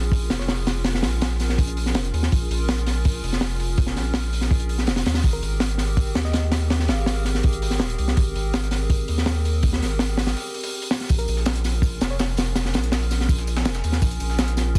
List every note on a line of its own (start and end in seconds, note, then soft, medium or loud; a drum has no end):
0.00 0.29 A#1 medium
0.12 kick loud
0.12 open hi-hat medium
0.30 1.05 F1 loud
0.30 snare loud
0.30 open hi-hat medium
0.39 0.45 C#5 medium
0.39 snare soft
0.48 0.54 C#5 medium
0.48 snare loud
0.48 open hi-hat medium
0.67 snare loud
0.67 open hi-hat medium
0.84 1.47 C#4 loud
0.84 1.47 F4 medium
0.84 1.47 G#4 loud
0.84 1.47 A#4 loud
0.84 snare loud
0.84 open hi-hat medium
0.94 snare medium
1.03 1.57 A#1 medium
1.03 snare loud
1.03 open hi-hat medium
1.21 snare loud
1.21 open hi-hat medium
1.40 snare soft
1.40 open hi-hat medium
1.49 snare soft
1.58 1.96 A#1 medium
1.58 kick loud
1.58 open hi-hat medium
1.67 closed hi-hat soft
1.77 open hi-hat medium
1.86 snare soft
1.95 2.11 F1 medium
1.95 snare loud
1.95 open hi-hat medium
2.04 closed hi-hat soft
2.13 2.30 D#2 medium
2.13 open hi-hat medium
2.23 snare soft
2.32 2.48 A#1 loud
2.32 2.94 C#4 loud
2.32 2.94 F4 loud
2.32 2.93 G#4 medium
2.32 2.93 A#4 loud
2.32 kick loud
2.32 open hi-hat medium
2.50 3.22 A#1 medium
2.50 open hi-hat medium
2.68 snare loud
2.68 open hi-hat medium
2.78 closed hi-hat soft
2.86 snare soft
2.86 open hi-hat medium
3.05 kick loud
3.05 open hi-hat medium
3.23 3.98 F1 loud
3.23 open hi-hat medium
3.33 snare soft
3.41 snare loud
3.41 open hi-hat medium
3.60 open hi-hat medium
3.78 4.40 C#4 loud
3.78 4.40 F4 medium
3.78 4.40 G#4 loud
3.78 4.40 A#4 loud
3.78 kick loud
3.78 open hi-hat medium
3.87 snare medium
3.96 4.49 A#1 medium
3.96 snare soft
3.96 open hi-hat medium
4.14 snare loud
4.14 open hi-hat medium
4.33 open hi-hat medium
4.41 snare soft
4.51 4.89 A#1 medium
4.51 kick loud
4.51 open hi-hat medium
4.60 closed hi-hat soft
4.69 open hi-hat medium
4.78 snare soft
4.87 5.04 F1 medium
4.87 snare medium
4.87 open hi-hat medium
4.96 snare loud
4.96 open hi-hat medium
5.06 5.22 D#2 medium
5.06 snare loud
5.06 open hi-hat medium
5.14 snare loud
5.14 open hi-hat medium
5.24 5.40 G#1 loud
5.24 5.86 C4 loud
5.24 5.86 G4 medium
5.24 5.86 G#4 loud
5.24 5.86 A#4 loud
5.24 kick loud
5.24 open hi-hat medium
5.33 5.55 A#4 medium
5.42 6.14 G#1 medium
5.42 open hi-hat medium
5.60 snare loud
5.60 open hi-hat medium
5.69 closed hi-hat soft
5.78 snare soft
5.78 open hi-hat medium
5.97 kick loud
5.97 open hi-hat medium
6.15 6.90 D#2 loud
6.15 snare loud
6.15 open hi-hat medium
6.24 6.47 D#5 loud
6.24 snare soft
6.33 snare medium
6.33 open hi-hat medium
6.52 snare loud
6.52 open hi-hat medium
6.70 7.32 C4 loud
6.70 7.32 G4 medium
6.70 7.32 G#4 loud
6.70 7.32 A#4 loud
6.70 snare loud
6.70 open hi-hat medium
6.79 snare medium
6.88 7.42 G#1 medium
6.88 7.16 F5 medium
6.88 snare loud
6.88 open hi-hat medium
7.06 snare loud
7.06 open hi-hat loud
7.25 snare soft
7.25 open hi-hat medium
7.35 snare soft
7.43 7.82 G#1 medium
7.43 kick loud
7.43 open hi-hat medium
7.53 closed hi-hat soft
7.62 open hi-hat medium
7.71 snare soft
7.80 7.97 D#1 medium
7.80 snare loud
7.80 open hi-hat medium
7.90 closed hi-hat soft
7.98 8.15 C2 medium
7.98 open hi-hat medium
8.08 snare soft
8.17 8.33 G#1 loud
8.17 8.79 C4 loud
8.17 8.79 G4 loud
8.17 8.79 G#4 medium
8.17 8.79 A#4 loud
8.17 kick loud
8.17 open hi-hat loud
8.35 9.07 G#1 medium
8.35 open hi-hat medium
8.54 snare loud
8.54 open hi-hat medium
8.63 closed hi-hat soft
8.71 snare soft
8.71 open hi-hat medium
8.90 kick loud
8.90 open hi-hat loud
9.08 9.83 D#2 loud
9.08 open hi-hat medium
9.18 snare soft
9.26 snare loud
9.26 open hi-hat medium
9.45 open hi-hat medium
9.63 10.25 C4 loud
9.63 10.25 G4 loud
9.63 10.25 G#4 loud
9.63 10.25 A#4 loud
9.63 kick loud
9.63 open hi-hat medium
9.73 snare medium
9.82 10.35 G#1 medium
9.82 snare soft
9.82 open hi-hat medium
9.99 snare loud
9.99 open hi-hat loud
10.17 snare loud
10.17 open hi-hat medium
10.27 snare loud
10.27 open hi-hat medium
10.37 open hi-hat medium
10.54 open hi-hat medium
10.63 open hi-hat medium
10.82 open hi-hat medium
10.91 snare loud
10.91 open hi-hat medium
11.00 snare soft
11.00 open hi-hat medium
11.09 11.26 A#1 loud
11.09 11.71 C#4 loud
11.09 11.71 F4 loud
11.09 11.71 G#4 loud
11.09 11.71 A#4 loud
11.09 kick loud
11.09 open hi-hat medium
11.09 tambourine medium
11.19 11.41 A#4 medium
11.19 closed hi-hat soft
11.28 12.00 A#1 medium
11.28 open hi-hat medium
11.28 tambourine medium
11.37 snare soft
11.46 snare loud
11.46 open hi-hat medium
11.46 tambourine medium
11.56 closed hi-hat soft
11.64 snare soft
11.64 open hi-hat medium
11.64 tambourine medium
11.82 kick loud
11.82 open hi-hat medium
11.82 tambourine medium
12.01 12.76 F1 loud
12.01 snare loud
12.01 open hi-hat medium
12.01 tambourine medium
12.10 12.16 C#5 medium
12.19 snare loud
12.19 open hi-hat medium
12.19 tambourine medium
12.37 snare loud
12.37 open hi-hat medium
12.37 tambourine medium
12.55 13.18 C#4 loud
12.55 13.18 F4 medium
12.55 13.18 G#4 loud
12.55 13.18 A#4 loud
12.55 snare loud
12.55 open hi-hat medium
12.55 tambourine medium
12.65 snare medium
12.65 snare soft
12.74 13.28 A#1 medium
12.74 snare loud
12.74 open hi-hat medium
12.74 tambourine medium
12.84 closed hi-hat soft
12.92 snare loud
12.92 open hi-hat medium
12.92 tambourine medium
13.11 snare soft
13.11 open hi-hat medium
13.11 tambourine medium
13.21 snare soft
13.29 13.67 A#1 medium
13.29 kick loud
13.29 open hi-hat medium
13.29 tambourine medium
13.38 snare medium
13.38 closed hi-hat soft
13.47 open hi-hat medium
13.47 tambourine medium
13.56 snare loud
13.56 snare soft
13.65 13.82 F1 medium
13.65 snare loud
13.65 open hi-hat medium
13.65 tambourine medium
13.75 snare loud
13.75 closed hi-hat soft
13.75 tambourine medium
13.84 14.00 D#2 medium
13.84 snare soft
13.84 open hi-hat medium
13.84 tambourine medium
13.92 snare medium
14.02 14.18 A#1 loud
14.02 14.64 C#4 loud
14.02 14.64 F4 loud
14.02 14.64 G#4 medium
14.02 14.64 A#4 loud
14.02 kick loud
14.02 open hi-hat medium
14.02 tambourine medium
14.11 closed hi-hat soft
14.20 14.79 A#1 medium
14.20 open hi-hat medium
14.20 tambourine medium
14.30 snare soft
14.39 snare loud
14.39 open hi-hat medium
14.39 tambourine medium
14.48 closed hi-hat soft
14.57 snare soft
14.57 open hi-hat medium
14.57 tambourine medium
14.75 kick loud
14.75 tambourine medium